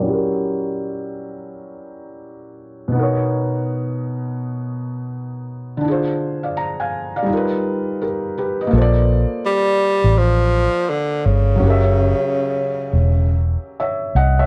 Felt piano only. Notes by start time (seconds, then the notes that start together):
Already playing: A#4 D5
0.00 F#3 C#4
0.06 E4 G4
0.13 A#4
2.88 B2 B3
2.95 D#4 A#4
3.02 C#5
5.77 D3 D4
5.85 E4 G#4
5.91 F4 C5
6.43 D5 F5
6.57 A#5
6.80 F5 G#5
7.16 D5 F5
7.23 G3 D#4
7.29 F4 A#4
7.37 B4
8.01 G4 A#4
8.38 G4 B4
8.61 B4 D#5
8.67 A#3 F4
8.74 A4 C5
8.81 D5
11.56 F#3 C#4
11.63 G4 A#4
11.70 E5
13.80 C#5 E5
14.16 D#5 F#5
14.39 C#5 E5